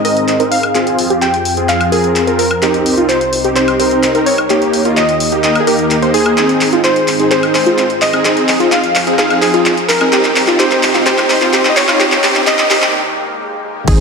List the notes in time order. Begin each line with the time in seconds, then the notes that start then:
Already playing: G#2 D#3 C4 G#4
0.05 C4 D#4 A#4 D#5, open hi-hat
0.17 closed hi-hat
0.28 clap, closed hi-hat
0.40 C4 D#4 A#4, closed hi-hat
0.51 F5, open hi-hat
0.63 closed hi-hat, high woodblock
0.75 F2 F3 C4 F4 G#4, clap, closed hi-hat
0.87 closed hi-hat
0.99 open hi-hat
1.10 C4 F4 G4, closed hi-hat
1.22 G5, clap, closed hi-hat
1.34 closed hi-hat
1.45 open hi-hat
1.57 C4 F4 G#4, closed hi-hat
1.69 F5, clap, closed hi-hat
1.81 closed hi-hat, high woodblock
1.92 C4 F4 G#4 A#4, open hi-hat
2.04 closed hi-hat
2.16 clap, closed hi-hat
2.27 C4 F4 A#4, closed hi-hat
2.39 A#4, open hi-hat
2.51 closed hi-hat, high woodblock
2.62 C2 C3 C4 D#4 G4, clap, closed hi-hat
2.74 closed hi-hat
2.86 open hi-hat
2.98 C4 D#4 F4, closed hi-hat
3.09 C5, clap, closed hi-hat
3.21 closed hi-hat
3.33 open hi-hat
3.44 C4 D#4 G4, closed hi-hat
3.56 C5, clap, closed hi-hat
3.68 closed hi-hat, high woodblock
3.79 C4 D#4 A#4 C5, open hi-hat
3.91 closed hi-hat
4.03 clap, closed hi-hat
4.15 C4 D#4 A#4, closed hi-hat
4.26 C#5, open hi-hat
4.38 high woodblock
4.50 D#2 D#3 A#3 D#4 G4, clap, closed hi-hat
4.62 closed hi-hat
4.73 open hi-hat
4.85 A#3 D#4 F4, closed hi-hat
4.97 D#5, clap, closed hi-hat
5.09 closed hi-hat
5.20 open hi-hat
5.32 A#3 D#4 G4, closed hi-hat
5.44 D#5, clap, closed hi-hat
5.55 closed hi-hat, high woodblock
5.60 G#4
5.67 A#3 D#4 G4 A#4, open hi-hat
5.79 closed hi-hat
5.91 clap, closed hi-hat
6.02 A#3 D#4 C5, closed hi-hat
6.14 G#4, open hi-hat
6.26 closed hi-hat, high woodblock
6.37 G#2 D#3 C4 D#4 G#4, clap, closed hi-hat, riser
6.49 closed hi-hat
6.61 clap, open hi-hat
6.73 C4 D#4 F4, closed hi-hat
6.84 C5, clap, closed hi-hat
6.96 closed hi-hat
7.08 clap, open hi-hat
7.20 C4 D#4 G#4, closed hi-hat
7.31 C4 D#4 G#4 C5, clap, closed hi-hat
7.43 closed hi-hat, high woodblock
7.55 C5, clap, open hi-hat
7.66 C4 D#4 F4, closed hi-hat
7.78 clap, closed hi-hat
7.90 closed hi-hat
8.02 D#5, clap, open hi-hat
8.13 C4 D#4 G#4, closed hi-hat, high woodblock
8.25 F2 F3 C4 D#4 G#4, clap, closed hi-hat
8.37 closed hi-hat
8.48 clap, open hi-hat
8.60 C4 D#4 F4, closed hi-hat
8.72 F5, clap, closed hi-hat
8.84 closed hi-hat
8.95 clap, open hi-hat
9.07 C4 D#4 G#4, closed hi-hat
9.18 C4 D#4 G#4 F5, clap, closed hi-hat
9.30 closed hi-hat, high woodblock
9.42 G#4, clap, open hi-hat
9.54 C4 D#4 F4, closed hi-hat
9.66 clap, closed hi-hat
9.77 closed hi-hat
9.89 A#4, clap, open hi-hat
10.01 C4 D#4 G#4, closed hi-hat, high woodblock
10.12 C2 C3 C4 D#4 G4, clap, closed hi-hat
10.24 clap, closed hi-hat
10.36 clap, open hi-hat
10.48 C4 D#4 F4, clap, closed hi-hat
10.59 C4 D#4 G4 C5, clap, closed hi-hat
10.71 clap, closed hi-hat
10.83 clap, open hi-hat
10.94 C4 D#4 F4, clap, closed hi-hat
11.06 C4 D#4 G4 C5, clap, closed hi-hat
11.18 clap, closed hi-hat, high woodblock
11.30 C5, clap, open hi-hat
11.41 C4 D#4 F4, clap, closed hi-hat
11.53 C4 D#4 G4, clap, closed hi-hat
11.65 clap, closed hi-hat
11.70 D#5
11.76 C#5, clap, open hi-hat
11.88 C4 D#4 F4, clap, closed hi-hat, high woodblock
12.00 D#2 D#3 A#3 C4 D#4 G4, clap, closed hi-hat
12.12 clap, closed hi-hat
12.24 C4 D#4 G4, clap, open hi-hat
12.35 clap, closed hi-hat
12.47 C4 D#4 G4 D#5, clap, closed hi-hat
12.59 clap, closed hi-hat
12.70 C4 D#4 G4, clap, open hi-hat
12.82 clap, closed hi-hat
12.94 swell
13.88 G#1 D#3 G#3 C4 D#4 G#4, kick, closed hi-hat, crash, impact